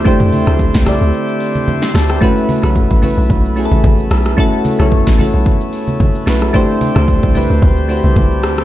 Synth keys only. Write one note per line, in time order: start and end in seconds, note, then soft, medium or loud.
0.00 0.04 A3 loud
0.00 0.05 D4 medium
0.00 0.06 E4 medium
0.00 0.07 G4 medium
0.00 0.07 C5 loud
0.04 0.38 A3 loud
0.04 0.38 D4 loud
0.04 0.39 E4 loud
0.04 0.39 G4 loud
0.04 0.39 C5 loud
0.46 0.79 A3 loud
0.46 0.79 D4 medium
0.46 0.79 E4 medium
0.46 0.80 G4 medium
0.46 0.80 C5 loud
0.85 1.73 A3 medium
0.85 1.73 D4 medium
0.85 1.74 E4 medium
0.85 1.74 G4 medium
0.85 1.42 D5 loud
1.83 1.95 E5 medium
1.83 1.94 C6 medium
1.95 2.09 C5 medium
1.95 2.09 A5 medium
2.10 2.23 B4 medium
2.10 2.35 G5 medium
2.21 2.54 A3 loud
2.21 2.54 C#4 loud
2.21 2.55 E4 loud
2.21 2.55 F#4 loud
2.21 2.56 B4 loud
2.62 2.95 A3 loud
2.62 2.95 C#4 medium
2.62 2.96 E4 medium
2.62 2.96 F#4 medium
2.62 2.96 B4 loud
3.02 3.47 A3 medium
3.02 3.47 C#4 medium
3.02 3.47 E4 medium
3.02 3.48 F#4 medium
3.02 3.48 B4 loud
3.56 4.22 A3 medium
3.56 4.23 C#4 medium
3.56 4.23 E4 medium
3.56 4.23 F#4 medium
3.56 3.65 G#4 medium
3.65 4.27 A4 loud
4.37 4.70 A3 loud
4.37 4.71 C#4 loud
4.37 4.71 E4 loud
4.37 4.71 F#4 loud
4.37 4.72 A4 loud
4.79 5.11 A3 loud
4.79 5.12 C#4 medium
4.79 5.12 E4 medium
4.79 5.12 F#4 medium
4.79 5.13 C#5 loud
5.18 6.05 A3 medium
5.18 6.06 C#4 medium
5.18 6.06 E4 medium
5.18 6.07 F#4 medium
5.18 6.07 A4 loud
6.26 6.49 A3 medium
6.26 6.49 C#4 medium
6.26 6.49 E4 medium
6.26 6.50 F#4 medium
6.26 6.50 B4 loud
6.53 6.87 A3 loud
6.53 6.87 D4 loud
6.53 6.87 E4 loud
6.53 6.88 G4 loud
6.53 6.88 C5 loud
6.95 7.27 A3 medium
6.95 7.28 D4 medium
6.95 7.28 E4 medium
6.95 7.29 G4 medium
6.95 7.29 C5 loud
7.34 7.79 A3 medium
7.34 7.79 D4 medium
7.34 7.80 E4 medium
7.34 7.80 G4 medium
7.34 7.81 B4 loud
7.88 8.55 A3 medium
7.88 8.55 D4 medium
7.88 8.55 E4 medium
7.88 7.97 F#4 medium
7.88 8.56 C5 medium
7.97 8.59 G4 medium